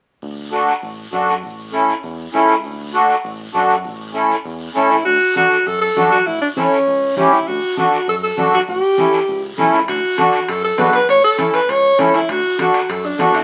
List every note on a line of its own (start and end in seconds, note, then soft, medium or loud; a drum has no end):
0.22 0.71 D2 loud
0.22 long guiro medium
0.51 0.73 D4 medium
0.51 0.73 F#4 medium
0.51 0.74 A4 medium
0.51 short guiro medium
0.68 short guiro medium
0.82 1.07 A1 medium
0.82 long guiro medium
1.12 1.44 F#2 medium
1.12 1.34 D4 medium
1.12 1.34 F#4 medium
1.12 1.34 A4 medium
1.12 short guiro medium
1.28 short guiro medium
1.43 1.91 A1 loud
1.43 long guiro medium
1.72 1.94 C#4 medium
1.72 1.94 E4 medium
1.72 1.94 A4 medium
1.72 short guiro medium
1.89 short guiro medium
2.03 2.28 E2 loud
2.03 long guiro medium
2.34 2.65 C#2 medium
2.34 2.55 C#4 medium
2.34 2.55 E4 medium
2.34 2.55 A4 loud
2.34 short guiro medium
2.49 short guiro medium
2.64 3.12 D2 loud
2.64 long guiro medium
2.93 3.15 D4 medium
2.93 3.15 F#4 medium
2.93 3.15 A4 medium
2.93 short guiro medium
3.09 short guiro medium
3.24 3.48 A1 medium
3.24 long guiro medium
3.53 3.86 F#2 medium
3.53 3.75 D4 medium
3.53 3.75 F#4 medium
3.53 3.76 A4 medium
3.53 short guiro medium
3.69 short guiro medium
3.84 4.33 A1 loud
3.84 long guiro medium
4.13 4.35 C#4 medium
4.13 4.36 E4 medium
4.13 4.36 A4 medium
4.13 short guiro medium
4.30 short guiro medium
4.45 4.69 E2 medium
4.45 long guiro medium
4.75 5.00 A1 medium
4.75 4.96 C#4 medium
4.75 4.92 C#4 medium
4.75 4.96 E4 medium
4.75 4.97 A4 medium
4.75 short guiro medium
4.90 5.04 E4 medium
4.90 short guiro medium
5.05 5.18 D2 loud
5.05 5.33 F#4 loud
5.05 high conga soft
5.05 long guiro medium
5.35 5.57 D4 medium
5.35 5.57 F#4 medium
5.35 5.69 F#4 loud
5.35 5.57 A4 medium
5.35 high conga medium
5.35 short guiro medium
5.51 short guiro medium
5.66 5.90 F#2 medium
5.66 5.81 A4 medium
5.66 high conga soft
5.66 long guiro medium
5.81 6.09 A4 medium
5.96 6.21 F#2 medium
5.96 6.18 D4 medium
5.96 6.18 F#4 medium
5.96 6.18 A4 medium
5.96 high conga medium
5.96 short guiro medium
6.12 6.28 F#4 loud
6.12 short guiro medium
6.26 6.39 A1 medium
6.26 6.41 E4 medium
6.26 high conga soft
6.26 long guiro medium
6.41 6.48 D4 medium
6.57 6.78 C#4 medium
6.57 7.13 C#4 medium
6.57 6.78 E4 medium
6.57 6.78 A4 medium
6.57 high conga medium
6.57 short guiro medium
6.72 short guiro medium
6.87 7.11 C#2 medium
6.87 high conga soft
6.87 long guiro medium
7.17 7.41 C#2 medium
7.17 7.34 C#4 medium
7.17 7.38 C#4 medium
7.17 7.38 E4 medium
7.17 7.39 G4 medium
7.17 high conga medium
7.17 short guiro medium
7.33 7.49 E4 medium
7.33 short guiro medium
7.47 7.60 D2 loud
7.47 7.77 F#4 medium
7.47 high conga soft
7.47 long guiro medium
7.77 7.98 D4 medium
7.77 7.98 F#4 medium
7.77 8.06 F#4 medium
7.77 7.98 A4 medium
7.77 high conga medium
7.77 short guiro medium
7.92 short guiro medium
8.07 8.32 F#2 medium
8.07 8.15 A4 loud
8.07 high conga soft
8.07 long guiro medium
8.23 8.51 A4 loud
8.37 8.62 F#2 medium
8.37 8.58 D4 medium
8.37 8.59 F#4 medium
8.37 8.59 A4 medium
8.37 high conga medium
8.37 short guiro medium
8.53 8.61 F#4 medium
8.53 short guiro medium
8.68 8.80 A1 loud
8.68 9.43 G4 loud
8.68 high conga soft
8.68 long guiro medium
8.98 9.19 C#4 medium
8.98 9.19 E4 medium
8.98 9.19 A4 medium
8.98 high conga medium
8.98 short guiro medium
9.13 short guiro medium
9.28 9.52 C#2 loud
9.28 high conga soft
9.28 long guiro medium
9.58 9.72 B1 medium
9.58 9.79 C#4 medium
9.58 9.79 E4 medium
9.58 9.79 A4 loud
9.58 high conga medium
9.58 short guiro medium
9.73 9.87 C#2 medium
9.73 short guiro medium
9.88 10.00 D2 medium
9.88 10.50 F#4 medium
9.88 high conga soft
9.88 high timbale medium
9.88 long guiro medium
10.18 10.39 D4 medium
10.18 10.39 F#4 medium
10.18 10.40 A4 medium
10.18 high conga medium
10.18 high timbale medium
10.18 short guiro medium
10.33 high timbale soft
10.33 short guiro medium
10.48 10.73 F#2 medium
10.48 10.63 A4 medium
10.48 high conga soft
10.48 high timbale medium
10.48 long guiro medium
10.64 10.92 A4 loud
10.77 11.03 F#2 medium
10.77 10.99 D4 medium
10.77 10.99 F#4 medium
10.77 10.99 B4 medium
10.77 high conga medium
10.77 high timbale medium
10.77 low timbale medium
10.77 short guiro medium
10.93 11.08 B4 medium
10.93 high timbale medium
10.93 short guiro medium
11.08 11.20 A1 loud
11.08 11.23 C#5 loud
11.08 high conga soft
11.08 high timbale medium
11.08 long guiro medium
11.24 11.56 A4 loud
11.38 11.59 C#4 medium
11.38 11.60 E4 medium
11.38 11.60 A4 medium
11.38 high conga medium
11.38 high timbale medium
11.38 short guiro medium
11.53 11.71 B4 medium
11.53 high timbale medium
11.53 short guiro medium
11.68 11.93 C#2 medium
11.68 12.01 C#5 loud
11.68 high conga soft
11.68 high timbale medium
11.68 long guiro medium
11.98 12.23 C#2 medium
11.98 12.20 C#4 medium
11.98 12.14 C#4 medium
11.98 12.20 E4 medium
11.98 12.20 A4 medium
11.98 high conga medium
11.98 high timbale medium
11.98 short guiro medium
12.14 12.32 E4 medium
12.14 high timbale medium
12.14 short guiro medium
12.29 12.41 D2 medium
12.29 12.60 F#4 loud
12.29 high conga soft
12.29 high timbale medium
12.29 long guiro medium
12.58 12.80 D4 medium
12.58 12.80 F#4 medium
12.58 12.92 F#4 medium
12.58 12.80 A4 medium
12.58 high conga medium
12.58 high timbale medium
12.58 short guiro medium
12.74 high timbale medium
12.74 short guiro medium
12.89 13.13 F#2 medium
12.89 13.07 A4 medium
12.89 high conga soft
12.89 high timbale medium
12.89 long guiro medium
13.05 13.22 D4 medium
13.18 13.43 E2 medium
13.18 13.40 D4 medium
13.18 13.40 F#4 medium
13.18 13.37 F#4 medium
13.18 13.40 A4 medium
13.18 high conga medium
13.18 high timbale medium
13.18 short guiro medium
13.34 13.44 E4 medium
13.34 high timbale medium
13.34 short guiro medium